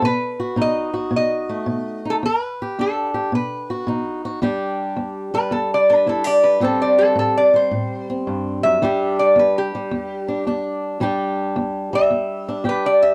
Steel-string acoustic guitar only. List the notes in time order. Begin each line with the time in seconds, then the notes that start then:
0.02 B2
0.40 F#4
0.56 B2 D#4
0.94 F#4
1.11 B2
1.49 A3
1.66 B2
2.05 D#4
2.23 E2
2.62 G4
2.79 E2 D4
3.14 G4
3.32 B2
3.70 F#4
3.87 B2 D#4
4.25 F#4
4.42 E2 G3 D4 G4
4.96 E2
5.34 G3
5.51 E2
5.90 D4
6.06 E2 E4
6.24 G4
6.60 A2 G3 C4 G4
7.16 A2
7.54 G3
7.71 A2
8.10 C4
8.27 G2
8.65 F#2
8.82 E2 G3 D4 G4
9.36 E2
9.75 G3
9.91 E2
10.28 D4
10.47 E2 D4
11.00 E2 G3 D4 G4
11.56 E2
11.93 G3
12.10 E2
12.48 D4
12.64 E2 G4